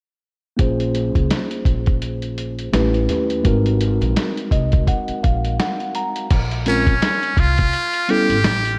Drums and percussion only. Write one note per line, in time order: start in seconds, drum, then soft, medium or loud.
0.59 kick medium
0.59 closed hi-hat medium
0.80 closed hi-hat soft
0.95 closed hi-hat medium
1.15 kick medium
1.15 closed hi-hat soft
1.30 snare medium
1.30 closed hi-hat medium
1.51 closed hi-hat soft
1.65 kick medium
1.65 closed hi-hat medium
1.86 kick medium
1.86 closed hi-hat soft
2.02 closed hi-hat medium
2.22 closed hi-hat soft
2.38 closed hi-hat medium
2.59 closed hi-hat soft
2.74 snare medium
2.74 closed hi-hat medium
2.94 closed hi-hat soft
3.09 snare soft
3.09 closed hi-hat medium
3.30 closed hi-hat medium
3.45 kick medium
3.45 closed hi-hat medium
3.66 closed hi-hat soft
3.81 closed hi-hat medium
4.02 closed hi-hat soft
4.16 snare loud
4.16 closed hi-hat medium
4.37 closed hi-hat medium
4.51 kick medium
4.51 closed hi-hat medium
4.72 kick medium
4.72 closed hi-hat soft
4.87 kick medium
4.87 closed hi-hat medium
5.08 closed hi-hat soft
5.24 kick medium
5.24 closed hi-hat medium
5.45 closed hi-hat soft
5.60 snare medium
5.60 closed hi-hat medium
5.80 closed hi-hat soft
5.95 closed hi-hat medium
6.16 closed hi-hat medium
6.30 kick loud
6.30 closed hi-hat medium
6.30 crash medium
6.51 closed hi-hat medium
6.66 closed hi-hat medium
6.87 kick medium
6.87 closed hi-hat soft
7.02 snare loud
7.02 closed hi-hat medium
7.23 closed hi-hat soft
7.37 kick medium
7.37 closed hi-hat medium
7.58 kick medium
7.58 closed hi-hat soft
7.73 closed hi-hat medium
7.93 closed hi-hat medium
8.09 closed hi-hat medium
8.30 closed hi-hat medium
8.44 snare loud
8.44 closed hi-hat medium
8.65 closed hi-hat soft